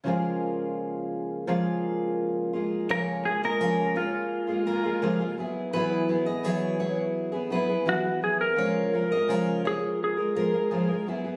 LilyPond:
<<
  \new Staff \with { instrumentName = "Steel-string acoustic guitar" } { \time 4/4 \key des \major \tempo 4 = 84 r1 | des''8 r16 ees''16 des''8 des''16 r8. bes'8 r4 | b'8 r16 ees''16 des''8 des''16 r8. b'8 r4 | des''8 r16 ees''16 des''8 des''16 r8. bes'8 r4 | }
  \new Staff \with { instrumentName = "Electric slide guitar" } { \time 4/4 \key des \major r1 | bes'8 aes'16 bes'8. f'2 r8 | r2. fis'8 gis'16 bes'16~ | bes'4. aes'8 aes'4. r8 | }
  \new Staff \with { instrumentName = "Twelve-string acoustic guitar" } { \time 4/4 \key des \major <des f aes bes f' aes'>2 <des f aes bes f' aes'>4. <aes bes f' aes'>8 | <des f aes bes f' aes'>8 <aes bes f' aes'>16 <aes bes f' aes'>16 <des f aes bes f' aes'>8 <aes bes f' aes'>8. <aes bes f' aes'>16 <aes bes f' aes'>16 <aes bes f' aes'>16 <des f aes bes f' aes'>16 <aes bes f' aes'>16 <fis b e' gis'>8 | <e fis b e' gis'>8 <fis b e' gis'>16 <b e' gis'>16 <e fis b e' gis'>8 <fis b e' gis'>8. <b e' gis'>16 <fis b e' gis'>16 <b e' gis'>16 <e fis b e' gis'>16 <b e' gis'>16 <fis b e' gis'>16 <b e' gis'>16 | <des f aes f' bes'>8 <f aes f' bes'>16 <aes f' bes'>16 <des f aes f' bes'>8 <f aes f' bes'>8. <aes f' bes'>16 <f aes f' bes'>16 <aes f' bes'>16 <des f aes f' bes'>16 <aes f' bes'>16 <fis b e' gis'>16 <b e' gis'>16 | }
>>